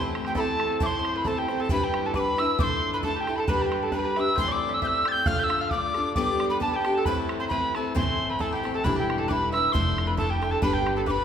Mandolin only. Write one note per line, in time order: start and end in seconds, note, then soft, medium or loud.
0.27 0.36 G4 medium
0.36 0.78 A4 medium
0.82 0.90 C5 medium
0.91 0.98 C5 medium
0.99 1.14 C5 medium
1.16 1.25 B4 medium
1.26 1.37 A4 medium
1.37 1.60 G4 medium
1.60 1.69 A4 medium
1.70 1.82 B4 medium
1.84 2.06 G4 medium
2.06 2.15 A4 medium
2.16 2.37 B4 medium
2.38 2.57 E5 medium
2.60 2.93 C5 medium
2.94 3.03 B4 medium
3.04 3.15 A4 medium
3.16 3.39 G4 medium
3.38 3.48 A4 medium
3.48 3.61 B4 medium
3.59 3.81 G4 medium
3.82 3.92 A4 medium
3.92 3.97 B4 medium
3.99 4.03 B4 medium
4.05 4.17 B4 medium
4.17 4.38 E5 medium
4.36 4.47 C5 medium
4.48 4.72 D5 medium
4.69 4.80 E5 medium
4.82 5.05 E5 medium
5.05 5.25 G5 medium
5.26 5.38 F5 medium
5.39 5.61 E5 medium
5.61 5.72 F5 medium
5.73 6.14 D5 medium
6.17 6.49 D5 medium
6.51 6.61 B4 medium
6.62 6.73 A4 medium
6.74 6.94 G4 medium
6.98 7.06 A4 medium
7.06 7.17 B4 medium
7.40 7.50 C5 medium
7.52 7.73 B4 medium
7.76 7.95 A4 medium
7.95 8.29 C5 medium
8.30 8.39 B4 medium
8.40 8.51 A4 medium
8.53 8.73 G4 medium
8.74 8.83 A4 medium
8.84 8.96 B4 medium
8.96 9.17 G4 medium
9.18 9.28 A4 medium
9.28 9.50 B4 medium
9.52 9.72 E5 medium
9.74 10.05 C5 medium
10.07 10.17 B4 medium
10.18 10.29 A4 medium
10.30 10.50 G4 medium
10.52 10.61 A4 medium
10.62 10.73 B4 medium
10.74 10.95 G4 medium
10.97 11.06 A4 medium
11.06 11.24 B4 medium